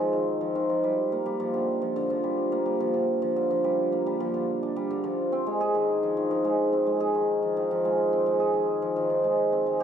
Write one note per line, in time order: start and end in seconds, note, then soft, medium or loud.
0.00 0.12 D#3 medium
0.00 0.18 F3 medium
0.00 0.18 G#3 medium
0.00 0.21 A#3 medium
0.00 3.71 C4 medium
0.13 0.54 D#3 medium
0.41 0.60 F3 medium
0.55 0.88 D#3 medium
0.69 0.88 F3 medium
0.84 1.25 G3 medium
1.12 2.52 A#3 medium
1.26 1.59 G3 medium
1.40 1.59 F3 medium
1.54 1.95 D3 medium
1.82 2.01 F3 medium
1.96 2.93 D3 medium
2.10 2.79 F3 medium
2.24 2.64 G3 medium
2.52 3.92 A#3 medium
2.66 2.99 G3 medium
2.80 2.99 F3 medium
2.94 3.35 D3 medium
3.22 3.41 F3 medium
3.36 4.33 D3 medium
3.51 4.19 F3 medium
3.64 4.05 G3 medium
3.92 8.21 A#3 medium
4.06 4.39 G3 medium
4.20 4.39 F3 medium
4.34 4.89 D3 medium
4.63 5.81 D4 medium
4.76 4.95 G3 medium
4.90 5.37 D3 medium
5.04 5.37 F3 medium
5.32 6.72 C4 medium
5.46 5.79 G#3 medium
5.61 7.00 G#4 medium
5.75 6.16 D#3 medium
6.03 6.21 F3 medium
6.17 7.13 D#3 medium
6.31 7.19 F3 medium
6.45 6.85 G#3 medium
6.73 8.12 C4 medium
6.87 7.19 G#3 medium
7.00 8.39 G#4 medium
7.14 7.56 D#3 medium
7.42 7.61 F3 medium
7.57 8.52 D#3 medium
7.71 8.59 F3 medium
7.85 8.25 G#3 medium
8.13 9.52 C4 medium
8.26 8.59 G#3 medium
8.40 9.83 G#4 medium
8.54 8.95 D#3 medium
8.82 9.02 F3 medium
8.96 9.83 D#3 medium
9.10 9.83 F3 medium
9.24 9.65 G#3 medium
9.53 9.83 C4 medium
9.66 9.83 G#3 medium
9.80 9.83 G4 medium